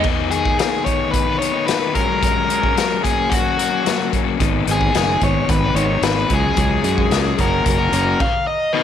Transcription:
0.03 overdriven electric guitar D#3 B3 D#4, kick, crash
0.31 overdriven electric guitar D#3 B3 D#4 G#4, closed hi-hat
0.45 overdriven electric guitar B3 D#4, kick
0.59 overdriven electric guitar D#3 B3 D#4 G#4, snare, closed hi-hat
0.85 overdriven electric guitar D#3 B3 D#4 C#5, kick, closed hi-hat
1.11 overdriven electric guitar B4, kick, closed hi-hat
1.27 overdriven electric guitar B3 D#4
1.39 overdriven electric guitar D#3 B3 D#4 C#5, closed hi-hat
1.53 overdriven electric guitar B3 D#4
1.67 overdriven electric guitar D#3 B3 D#4 B4, snare, closed hi-hat
1.80 overdriven electric guitar B3 D#4
1.94 overdriven electric guitar F#3 G#3 C#4 A#4, kick, closed hi-hat
2.08 overdriven electric guitar G#3 C#4
2.21 overdriven electric guitar F#3 G#3 C#4, kick, closed hi-hat
2.49 overdriven electric guitar F#3 G#3 C#4, closed hi-hat
2.62 overdriven electric guitar G#3 C#4, kick
2.75 overdriven electric guitar F#3 G#3 C#4, snare, closed hi-hat
3.03 overdriven electric guitar F#3 A#3 C#4 G#4, kick, closed hi-hat
3.30 overdriven electric guitar F#4, kick, closed hi-hat
3.43 overdriven electric guitar A#3 C#4
3.58 overdriven electric guitar F#3 A#3 C#4, closed hi-hat
3.71 overdriven electric guitar A#3 C#4
3.84 overdriven electric guitar F#3 A#3 C#4, snare, closed hi-hat
3.97 overdriven electric guitar A#3 C#4
4.11 overdriven electric guitar F#3 A#3 C#4, kick, closed hi-hat
4.24 overdriven electric guitar A#3 C#4
4.38 fingered electric bass G#1, overdriven electric guitar D#3 B3 D#4, kick, closed hi-hat
4.65 fingered electric bass G#1, overdriven electric guitar D#3 B3 D#4, closed hi-hat
4.72 overdriven electric guitar G#4
4.80 overdriven electric guitar B3 D#4, kick
4.93 fingered electric bass F#1, overdriven electric guitar D#3 B3 D#4, snare, closed hi-hat
4.97 overdriven electric guitar G#4
5.20 fingered electric bass G#1, overdriven electric guitar D#3 B3 D#4, kick, closed hi-hat
5.24 overdriven electric guitar C#5
5.49 fingered electric bass G#1, overdriven electric guitar B4, kick, closed hi-hat
5.61 overdriven electric guitar B3 D#4
5.74 fingered electric bass G#1, overdriven electric guitar D#3 B3 C#5, closed hi-hat
5.78 overdriven electric guitar D#4
5.88 overdriven electric guitar B3 D#4
6.01 fingered electric bass G#1, overdriven electric guitar D#3 B3 D#4 B4, snare, closed hi-hat
6.15 overdriven electric guitar B3 D#4
6.28 fingered electric bass C#2, overdriven electric guitar F#3 G#3 C#4, kick, closed hi-hat
6.34 overdriven electric guitar G#4
6.43 overdriven electric guitar G#3 C#4
6.55 fingered electric bass C#2, overdriven electric guitar F#3 G#3 C#4, kick, closed hi-hat
6.83 fingered electric bass F#2, overdriven electric guitar F#3 G#3 C#4, closed hi-hat
6.97 overdriven electric guitar G#3 C#4, kick
7.10 fingered electric bass C#2, overdriven electric guitar F#3 G#3 C#4, snare, closed hi-hat
7.38 fingered electric bass F#1, overdriven electric guitar A#3 C#4 F#4 A#4, kick, closed hi-hat
7.65 fingered electric bass F#1, overdriven electric guitar A#4, kick, closed hi-hat
7.78 overdriven electric guitar C#4 F#4
7.92 fingered electric bass F#1, overdriven electric guitar A#3 C#4 F#4, closed hi-hat
8.06 overdriven electric guitar C#4 F#4
8.20 overdriven electric guitar F5, kick, crash
8.47 overdriven electric guitar D#5
8.73 overdriven electric guitar D#3 B3 D#4 B4

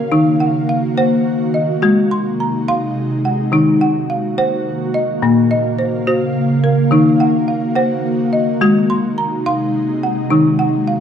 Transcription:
Already playing: ambient pad C#3 A#3 F5, marimba A#4 C5
0.12 marimba D#3 D#4, ambient pad D#3 F#4
0.40 marimba F#5
0.69 marimba F5
0.98 marimba C5 F#5
1.54 marimba D#5
1.82 ambient pad C3 G#3 D#4, marimba G#3 F#4
2.11 marimba C6
2.40 marimba A#5
2.68 marimba F5 C6
3.25 marimba F#5
3.52 marimba D#3 D#4, ambient pad D#3 A#3 F#4
3.81 marimba F#5
4.10 marimba F5
4.38 marimba C5 F#5
4.94 marimba D#5
5.22 marimba A#2 A#3, ambient pad C#3 F5
5.51 marimba D#5
5.79 marimba C5
6.07 marimba F#4 C5
6.64 marimba A#4
6.91 marimba D#3 D#4, ambient pad D#3 F#4
7.20 marimba F#5
7.48 marimba F5
7.75 marimba C5 F#5
8.33 marimba D#5
8.61 ambient pad C3 G#3 D#4, marimba G#3 F#4
8.90 marimba C6
9.18 marimba A#5
9.46 marimba F5 C6
10.03 marimba F#5
10.30 ambient pad D#3 A#3 F#4, marimba D#3 D#4
10.59 marimba F#5
10.88 marimba F5

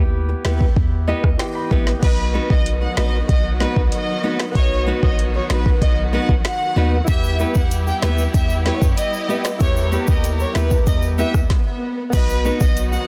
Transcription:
Already playing: 808-style bass D#2, grand piano B3 E4 G4
0.29 muted nylon-string guitar stroke
0.44 808-style bass D#2, nylon-string guitar B3 E4 G4 B4, finger snap, snare
0.61 kick
0.76 808-style bass E2, kick
1.07 nylon-string guitar B3 E4 G4 B4, grand piano D#5
1.24 808-style bass D#2, kick, cross-stick
1.38 grand piano E3 B3 G4 G5, finger snap, snare
1.55 grand piano B5
1.71 808-style bass A#1, nylon-string guitar B3 E4 G4 B4, kick
1.87 snare
1.99 808-style bass B1, string section D#3 F#3 B3 F#4, grand piano B3 F#4, violin section B4, kick, closed hi-hat, crash
2.06 grand piano D#5
2.34 nylon-string guitar B3 D#4 F#4 B4
2.50 808-style bass B1, violin section D#5, kick
2.66 closed hi-hat
2.81 violin section F#5, muted nylon-string guitar stroke
2.97 808-style bass A#1, nylon-string guitar B3 D#4 F#4 B4, violin section D#5, finger snap, snare
3.29 808-style bass B1, violin section D#5, kick, closed hi-hat
3.60 nylon-string guitar B3 D#4 F#4 B4, violin section B4, snare
3.76 808-style bass C#2, kick
3.92 violin section D#5, closed hi-hat
4.23 nylon-string guitar B3 D#4 F#4 B4
4.40 finger snap, snare
4.52 808-style bass B1, grand piano B3 F#4, violin section C#5, kick, closed hi-hat
4.59 grand piano D#5
4.86 nylon-string guitar B3 D#4 F#4 B4
5.03 808-style bass A#1, violin section D#5, kick
5.19 closed hi-hat
5.34 violin section C#5, muted nylon-string guitar stroke
5.50 808-style bass A#1, nylon-string guitar B3 D#4 F#4 B4, violin section B4, finger snap, snare
5.66 kick
5.81 808-style bass B1, violin section D#5, kick, closed hi-hat
6.13 nylon-string guitar B3 D#4 F#4 B4, violin section F#5
6.29 808-style bass A#1, kick
6.44 violin section F#5, finger snap, snare, closed hi-hat
6.76 808-style bass D#2, nylon-string guitar B3 D#4 F#4 B4
7.04 808-style bass E2, string section G3 B3 E4 G4, grand piano B3 E4, violin section E5, kick, closed hi-hat, shaker
7.11 grand piano G4
7.24 shaker
7.39 nylon-string guitar B3 E4 G4 B4, shaker
7.55 808-style bass E2, violin section F#5, kick, shaker
7.71 closed hi-hat, shaker
7.87 violin section G5, muted nylon-string guitar stroke, shaker
8.02 808-style bass D#2, nylon-string guitar B3 E4 G4 B4, violin section E5, finger snap, snare, shaker
8.18 shaker
8.34 808-style bass E2, violin section E5, kick, closed hi-hat, shaker
8.50 shaker
8.65 nylon-string guitar B3 E4 G4 B4, violin section C#5, snare
8.82 808-style bass F#2, kick, shaker
8.97 violin section D#5, closed hi-hat, shaker
9.14 shaker
9.28 nylon-string guitar B3 E4 G4 B4, shaker
9.45 finger snap, snare, shaker
9.59 808-style bass E2, grand piano B3 E4 G4, string section A#4, violin section C#5, kick, closed hi-hat, swell, shaker
9.76 shaker
9.92 nylon-string guitar B3 E4 G4 B4, shaker
10.07 808-style bass D#2, violin section D#5, kick, shaker
10.24 closed hi-hat, shaker
10.39 violin section C#5, muted nylon-string guitar stroke, shaker
10.53 808-style bass D#2, nylon-string guitar B3 E4 G4 B4, grand piano B3 E4 G4, violin section B4, finger snap, snare, shaker
10.71 kick, shaker
10.87 808-style bass E2, violin section D#5, kick, closed hi-hat, shaker
11.02 shaker
11.18 nylon-string guitar B3 E4 G4 B4, violin section E5, shaker
11.34 808-style bass D#2, kick, cross-stick, shaker
11.50 kick, snare
12.10 808-style bass B1, string section D#3 F#3 B3 F#4, grand piano B3 F#4, violin section B4, kick, closed hi-hat, crash, shaker
12.17 grand piano D#5
12.29 shaker
12.45 nylon-string guitar B3 D#4 F#4 B4, shaker
12.60 808-style bass B1, violin section D#5, kick, shaker
12.77 closed hi-hat, shaker
12.92 violin section F#5, muted nylon-string guitar stroke, shaker

